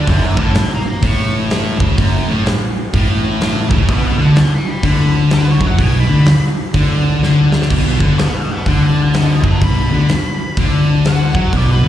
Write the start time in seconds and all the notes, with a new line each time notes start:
0.07 F#1 F#2 D5 F#5, kick, open hi-hat
0.25 D5 F#5
0.37 A1 A2, kick
0.42 F#5 A5
0.55 F#5, snare, open hi-hat
0.59 A5
0.75 A#5 D6
0.90 A#5 D6
1.02 A1 A2, kick, open hi-hat
1.07 C#6
1.50 snare, open hi-hat
1.79 C#2 C#3, kick
1.98 F#1 F#2, kick, open hi-hat
2.28 A1 A2
2.46 snare, open hi-hat
2.94 A1 A2, kick, open hi-hat
3.41 snare, open hi-hat
3.70 C#2 C#3, kick
3.89 B1 B2 D#5 F#5, kick, open hi-hat
4.06 D#5 F#5
4.18 D2 D3
4.23 F#5 A5
4.36 F#5, snare, open hi-hat
4.40 A5
4.55 B5 D6
4.71 B5 D6
4.83 D2 D3 B5, kick, open hi-hat
5.30 B4, snare, open hi-hat
5.52 C#5
5.61 F#2 F#3, kick
5.66 F#5
5.78 B1 B2, kick, open hi-hat
5.82 G#5
5.99 B5
6.08 D2 D3
6.26 snare, open hi-hat
6.74 D2 D3, kick, open hi-hat
7.21 D2 D3, snare
7.52 snare
7.62 snare
7.70 B1 B2, kick, crash
8.00 D2 D3, kick
8.19 D#5 F#5, snare, open hi-hat
8.37 D#5 F#5
8.53 D#5 F#5
8.66 D2 D3 F#5 A5, kick, open hi-hat
8.86 F#5 A5
9.02 F#5 A5
9.14 D#5 B5, snare, open hi-hat
9.33 D#5 B5
9.43 F#2 F#3, kick
9.50 D#5 B5
9.62 B1 B2 B5, kick, open hi-hat
9.92 D2 D3
10.09 snare, open hi-hat
10.57 D2 D3, kick, open hi-hat
11.05 F#5, snare, open hi-hat
11.35 F#2 F#3, kick
11.53 B1 B2, kick, open hi-hat
11.57 D5
11.71 B4
11.83 D2 D3